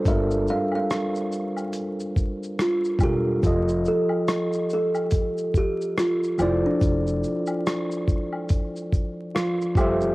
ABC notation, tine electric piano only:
X:1
M:4/4
L:1/8
Q:"Swing 16ths" 1/4=71
K:Fmix
V:1 name="Tine electric piano"
[G,DFAB]4 z3 [G,DFAB] | [F,FGAe]4 z3 [F,FAcd]- | [F,FAcd]3 z3 [F,F] [F,G,FGAc=e] |]